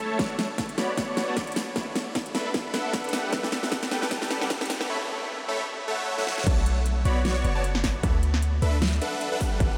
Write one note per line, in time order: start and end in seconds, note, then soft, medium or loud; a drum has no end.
0.00 0.17 A3 medium
0.00 0.17 A4 medium
0.00 0.17 C#5 medium
0.00 0.17 E5 medium
0.00 0.17 A5 medium
0.19 0.32 B3 medium
0.19 0.32 F#4 medium
0.19 0.32 C#5 medium
0.19 0.32 D5 medium
0.19 0.32 A5 medium
0.19 kick medium
0.19 snare medium
0.19 closed hi-hat medium
0.39 snare medium
0.39 closed hi-hat medium
0.58 kick loud
0.58 snare medium
0.58 closed hi-hat medium
0.69 closed hi-hat medium
0.78 0.91 B3 medium
0.78 0.91 F#4 medium
0.78 0.91 C#5 medium
0.78 0.91 D5 medium
0.78 0.91 B5 medium
0.78 snare medium
0.78 closed hi-hat medium
0.97 1.25 B3 medium
0.97 1.25 F#4 medium
0.97 1.25 C#5 medium
0.97 1.25 D5 medium
0.97 1.25 C#6 medium
0.97 kick medium
0.97 snare medium
0.97 closed hi-hat medium
1.17 snare medium
1.17 closed hi-hat medium
1.28 1.35 B3 medium
1.28 1.35 F#4 medium
1.28 1.35 C#5 medium
1.28 1.35 D5 medium
1.28 1.35 A5 medium
1.37 kick loud
1.37 snare medium
1.37 closed hi-hat medium
1.47 closed hi-hat soft
1.52 closed hi-hat medium
1.56 snare medium
1.56 open hi-hat medium
1.76 1.85 D4 medium
1.76 1.85 A4 medium
1.76 1.85 B4 medium
1.76 1.85 E5 medium
1.76 1.85 B5 loud
1.76 kick loud
1.76 snare medium
1.76 closed hi-hat medium
1.96 snare medium
1.96 closed hi-hat medium
2.15 kick loud
2.15 snare medium
2.15 closed hi-hat medium
2.26 closed hi-hat medium
2.35 2.48 D4 loud
2.35 2.48 A4 medium
2.35 2.48 B4 medium
2.35 2.48 E5 medium
2.35 2.48 B5 loud
2.35 snare medium
2.35 closed hi-hat medium
2.54 kick medium
2.54 snare medium
2.54 closed hi-hat medium
2.74 3.02 D4 medium
2.74 3.02 A4 medium
2.74 3.02 B4 medium
2.74 3.02 E5 medium
2.74 3.02 F#5 medium
2.74 snare medium
2.74 closed hi-hat medium
2.93 kick loud
2.93 snare medium
2.93 closed hi-hat medium
3.04 3.11 D4 medium
3.04 3.11 A4 medium
3.04 3.11 B4 medium
3.04 3.11 E5 medium
3.04 3.11 F#5 loud
3.04 closed hi-hat soft
3.09 closed hi-hat medium
3.13 3.31 G3 medium
3.13 3.31 G4 medium
3.13 3.31 A4 medium
3.13 3.31 B4 medium
3.13 3.31 F#5 medium
3.13 snare medium
3.13 open hi-hat loud
3.33 3.46 G3 medium
3.33 3.46 G4 medium
3.33 3.46 A4 medium
3.33 3.46 B4 medium
3.33 3.46 F#5 loud
3.33 kick loud
3.33 snare medium
3.33 closed hi-hat medium
3.43 snare medium
3.52 snare medium
3.52 closed hi-hat medium
3.63 snare medium
3.72 kick loud
3.72 snare medium
3.72 closed hi-hat medium
3.83 snare medium
3.83 closed hi-hat medium
3.91 4.05 G3 medium
3.91 4.05 G4 medium
3.91 4.05 A4 medium
3.91 4.05 B4 medium
3.91 4.05 G5 medium
3.91 snare loud
3.91 closed hi-hat medium
4.02 snare medium
4.11 4.39 G3 medium
4.11 4.39 G4 medium
4.11 4.39 A4 medium
4.11 4.39 B4 medium
4.11 4.39 A5 medium
4.11 kick loud
4.11 snare medium
4.11 closed hi-hat medium
4.22 snare medium
4.31 snare loud
4.31 closed hi-hat medium
4.41 4.49 G3 medium
4.41 4.49 G4 medium
4.41 4.49 A4 medium
4.41 4.49 B4 medium
4.41 4.49 F#5 medium
4.41 snare medium
4.50 kick loud
4.50 snare loud
4.50 closed hi-hat medium
4.61 snare medium
4.61 closed hi-hat soft
4.66 closed hi-hat medium
4.70 snare loud
4.70 open hi-hat loud
4.81 snare medium
4.89 4.98 A3 medium
4.89 4.98 A4 medium
4.89 4.98 C#5 medium
4.89 4.98 E5 medium
4.89 4.98 B5 loud
5.48 5.62 A3 loud
5.48 5.62 A4 medium
5.48 5.62 C#5 medium
5.48 5.62 E5 medium
5.48 5.62 B5 loud
5.88 6.16 A3 medium
5.88 6.16 A4 medium
5.88 6.16 C#5 medium
5.88 6.16 E5 medium
5.88 6.16 F#5 medium
6.18 6.25 A3 loud
6.18 6.25 A4 medium
6.18 6.25 C#5 medium
6.18 6.25 E5 medium
6.18 6.25 F#5 loud
6.18 snare medium
6.27 6.44 A3 medium
6.27 6.44 A4 medium
6.27 6.44 C#5 medium
6.27 6.44 E5 medium
6.27 6.44 F#5 medium
6.27 snare medium
6.38 snare medium
6.46 7.04 B1 loud
6.46 6.60 B3 medium
6.46 6.60 F#4 medium
6.46 6.60 C#5 medium
6.46 6.60 D5 medium
6.46 6.60 A5 loud
6.46 kick loud
6.46 closed hi-hat medium
6.46 crash loud
6.66 closed hi-hat medium
6.86 closed hi-hat medium
7.05 7.43 B1 medium
7.05 7.19 B3 medium
7.05 7.19 F#4 medium
7.05 7.19 C#5 medium
7.05 7.19 D5 medium
7.05 7.19 B5 medium
7.05 closed hi-hat medium
7.25 7.53 B3 medium
7.25 7.53 F#4 medium
7.25 7.53 C#5 medium
7.25 7.53 D5 medium
7.25 7.53 C#6 medium
7.25 snare loud
7.25 closed hi-hat medium
7.44 8.02 F#1 medium
7.44 closed hi-hat medium
7.55 7.62 B3 medium
7.55 7.62 F#4 medium
7.55 7.62 C#5 medium
7.55 7.62 D5 medium
7.55 7.62 A5 medium
7.64 closed hi-hat medium
7.75 snare medium
7.84 kick medium
7.84 snare medium
7.84 open hi-hat medium
8.03 8.61 D2 loud
8.03 8.12 D4 medium
8.03 8.12 A4 medium
8.03 8.12 B4 medium
8.03 8.12 E5 medium
8.03 8.12 B5 loud
8.03 kick loud
8.03 closed hi-hat medium
8.23 closed hi-hat medium
8.34 snare medium
8.43 closed hi-hat medium
8.62 9.00 D2 medium
8.62 8.76 D4 medium
8.62 8.76 A4 medium
8.62 8.76 B4 medium
8.62 8.76 E5 medium
8.62 8.76 B5 loud
8.62 closed hi-hat medium
8.82 snare loud
8.82 closed hi-hat medium
9.01 9.29 D4 medium
9.01 9.29 A4 medium
9.01 9.29 B4 medium
9.01 9.29 E5 medium
9.01 9.29 F#5 medium
9.01 closed hi-hat medium
9.21 closed hi-hat medium
9.32 9.39 D4 loud
9.32 9.39 A4 medium
9.32 9.39 B4 medium
9.32 9.39 E5 medium
9.32 9.39 F#5 loud
9.41 9.58 G3 medium
9.41 9.58 G4 medium
9.41 9.58 A4 medium
9.41 9.58 B4 medium
9.41 9.58 F#5 medium
9.41 kick medium
9.41 open hi-hat medium
9.60 9.78 G1 loud
9.60 9.74 G3 medium
9.60 9.74 G4 medium
9.60 9.74 A4 medium
9.60 9.74 B4 medium
9.60 9.74 F#5 loud
9.60 kick loud
9.60 closed hi-hat medium